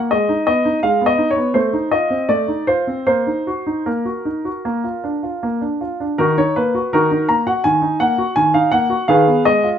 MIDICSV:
0, 0, Header, 1, 2, 480
1, 0, Start_track
1, 0, Key_signature, -6, "minor"
1, 0, Tempo, 729927
1, 68, Time_signature, 4, 2, 24, 8
1, 1509, Tempo, 779221
1, 3909, Tempo, 726392
1, 6285, End_track
2, 0, Start_track
2, 0, Title_t, "Grand piano"
2, 0, Program_c, 0, 0
2, 0, Note_on_c, 0, 58, 39
2, 71, Note_on_c, 0, 75, 67
2, 72, Note_off_c, 0, 58, 0
2, 74, Note_on_c, 0, 56, 46
2, 185, Note_off_c, 0, 56, 0
2, 190, Note_on_c, 0, 63, 36
2, 297, Note_off_c, 0, 75, 0
2, 307, Note_on_c, 0, 75, 73
2, 311, Note_off_c, 0, 63, 0
2, 311, Note_on_c, 0, 59, 39
2, 429, Note_on_c, 0, 63, 39
2, 431, Note_off_c, 0, 59, 0
2, 518, Note_off_c, 0, 75, 0
2, 545, Note_on_c, 0, 77, 68
2, 547, Note_on_c, 0, 56, 45
2, 549, Note_off_c, 0, 63, 0
2, 658, Note_off_c, 0, 56, 0
2, 666, Note_on_c, 0, 59, 38
2, 698, Note_on_c, 0, 75, 69
2, 700, Note_off_c, 0, 77, 0
2, 776, Note_on_c, 0, 63, 36
2, 786, Note_off_c, 0, 59, 0
2, 841, Note_off_c, 0, 75, 0
2, 858, Note_on_c, 0, 73, 65
2, 898, Note_on_c, 0, 59, 37
2, 902, Note_off_c, 0, 63, 0
2, 1013, Note_on_c, 0, 72, 67
2, 1017, Note_on_c, 0, 57, 50
2, 1018, Note_off_c, 0, 59, 0
2, 1018, Note_off_c, 0, 73, 0
2, 1135, Note_off_c, 0, 57, 0
2, 1139, Note_on_c, 0, 63, 37
2, 1235, Note_off_c, 0, 72, 0
2, 1259, Note_on_c, 0, 75, 65
2, 1264, Note_on_c, 0, 65, 38
2, 1268, Note_off_c, 0, 63, 0
2, 1383, Note_on_c, 0, 60, 35
2, 1393, Note_off_c, 0, 65, 0
2, 1504, Note_on_c, 0, 74, 65
2, 1505, Note_on_c, 0, 57, 41
2, 1509, Note_off_c, 0, 75, 0
2, 1515, Note_off_c, 0, 60, 0
2, 1621, Note_off_c, 0, 57, 0
2, 1624, Note_on_c, 0, 63, 32
2, 1742, Note_on_c, 0, 72, 65
2, 1744, Note_off_c, 0, 74, 0
2, 1747, Note_on_c, 0, 65, 38
2, 1751, Note_off_c, 0, 63, 0
2, 1865, Note_on_c, 0, 60, 34
2, 1873, Note_off_c, 0, 65, 0
2, 1975, Note_off_c, 0, 72, 0
2, 1984, Note_on_c, 0, 72, 69
2, 1985, Note_on_c, 0, 58, 45
2, 1988, Note_off_c, 0, 60, 0
2, 2106, Note_off_c, 0, 58, 0
2, 2109, Note_on_c, 0, 63, 33
2, 2234, Note_on_c, 0, 66, 38
2, 2238, Note_off_c, 0, 63, 0
2, 2353, Note_on_c, 0, 63, 36
2, 2361, Note_off_c, 0, 66, 0
2, 2473, Note_off_c, 0, 72, 0
2, 2473, Note_on_c, 0, 70, 51
2, 2475, Note_on_c, 0, 58, 43
2, 2481, Note_off_c, 0, 63, 0
2, 2592, Note_off_c, 0, 58, 0
2, 2592, Note_on_c, 0, 66, 32
2, 2715, Note_on_c, 0, 63, 34
2, 2720, Note_off_c, 0, 66, 0
2, 2836, Note_on_c, 0, 66, 36
2, 2842, Note_off_c, 0, 63, 0
2, 2957, Note_off_c, 0, 66, 0
2, 2960, Note_on_c, 0, 58, 45
2, 3076, Note_off_c, 0, 58, 0
2, 3076, Note_on_c, 0, 65, 37
2, 3198, Note_on_c, 0, 62, 36
2, 3205, Note_off_c, 0, 65, 0
2, 3317, Note_on_c, 0, 65, 33
2, 3326, Note_off_c, 0, 62, 0
2, 3440, Note_on_c, 0, 58, 40
2, 3444, Note_off_c, 0, 65, 0
2, 3553, Note_on_c, 0, 62, 34
2, 3555, Note_off_c, 0, 58, 0
2, 3674, Note_on_c, 0, 65, 38
2, 3676, Note_off_c, 0, 70, 0
2, 3680, Note_off_c, 0, 62, 0
2, 3793, Note_on_c, 0, 62, 33
2, 3798, Note_off_c, 0, 65, 0
2, 3904, Note_on_c, 0, 70, 73
2, 3907, Note_on_c, 0, 51, 49
2, 3909, Note_off_c, 0, 62, 0
2, 3912, Note_on_c, 0, 63, 53
2, 3913, Note_on_c, 0, 66, 55
2, 4022, Note_off_c, 0, 63, 0
2, 4025, Note_off_c, 0, 66, 0
2, 4027, Note_off_c, 0, 51, 0
2, 4029, Note_off_c, 0, 70, 0
2, 4032, Note_on_c, 0, 63, 40
2, 4033, Note_on_c, 0, 73, 67
2, 4154, Note_on_c, 0, 71, 66
2, 4155, Note_off_c, 0, 73, 0
2, 4156, Note_on_c, 0, 58, 42
2, 4160, Note_off_c, 0, 63, 0
2, 4276, Note_on_c, 0, 66, 43
2, 4283, Note_off_c, 0, 58, 0
2, 4372, Note_off_c, 0, 71, 0
2, 4397, Note_off_c, 0, 66, 0
2, 4398, Note_on_c, 0, 70, 75
2, 4402, Note_on_c, 0, 51, 45
2, 4405, Note_on_c, 0, 63, 58
2, 4407, Note_on_c, 0, 66, 55
2, 4510, Note_off_c, 0, 63, 0
2, 4515, Note_off_c, 0, 51, 0
2, 4520, Note_on_c, 0, 63, 39
2, 4612, Note_off_c, 0, 70, 0
2, 4623, Note_off_c, 0, 66, 0
2, 4633, Note_on_c, 0, 82, 67
2, 4635, Note_on_c, 0, 58, 36
2, 4642, Note_off_c, 0, 63, 0
2, 4751, Note_off_c, 0, 82, 0
2, 4752, Note_on_c, 0, 66, 39
2, 4753, Note_on_c, 0, 78, 65
2, 4758, Note_off_c, 0, 58, 0
2, 4867, Note_on_c, 0, 80, 76
2, 4870, Note_off_c, 0, 78, 0
2, 4874, Note_on_c, 0, 51, 48
2, 4875, Note_off_c, 0, 66, 0
2, 4984, Note_on_c, 0, 63, 41
2, 4986, Note_off_c, 0, 51, 0
2, 5104, Note_on_c, 0, 78, 75
2, 5105, Note_off_c, 0, 80, 0
2, 5107, Note_on_c, 0, 58, 41
2, 5111, Note_off_c, 0, 63, 0
2, 5225, Note_on_c, 0, 66, 42
2, 5232, Note_off_c, 0, 58, 0
2, 5320, Note_off_c, 0, 78, 0
2, 5341, Note_on_c, 0, 80, 83
2, 5346, Note_on_c, 0, 51, 47
2, 5351, Note_off_c, 0, 66, 0
2, 5462, Note_off_c, 0, 51, 0
2, 5463, Note_off_c, 0, 80, 0
2, 5463, Note_on_c, 0, 77, 68
2, 5464, Note_on_c, 0, 63, 42
2, 5577, Note_on_c, 0, 78, 80
2, 5582, Note_on_c, 0, 58, 39
2, 5584, Note_off_c, 0, 77, 0
2, 5590, Note_off_c, 0, 63, 0
2, 5697, Note_on_c, 0, 66, 44
2, 5710, Note_off_c, 0, 58, 0
2, 5797, Note_off_c, 0, 78, 0
2, 5818, Note_on_c, 0, 77, 73
2, 5821, Note_off_c, 0, 66, 0
2, 5821, Note_on_c, 0, 51, 54
2, 5827, Note_on_c, 0, 68, 59
2, 5828, Note_on_c, 0, 71, 57
2, 5940, Note_off_c, 0, 51, 0
2, 5945, Note_on_c, 0, 59, 41
2, 6039, Note_off_c, 0, 77, 0
2, 6051, Note_off_c, 0, 68, 0
2, 6052, Note_off_c, 0, 71, 0
2, 6065, Note_on_c, 0, 75, 77
2, 6069, Note_on_c, 0, 56, 44
2, 6072, Note_off_c, 0, 59, 0
2, 6187, Note_on_c, 0, 65, 46
2, 6196, Note_off_c, 0, 56, 0
2, 6212, Note_off_c, 0, 75, 0
2, 6285, Note_off_c, 0, 65, 0
2, 6285, End_track
0, 0, End_of_file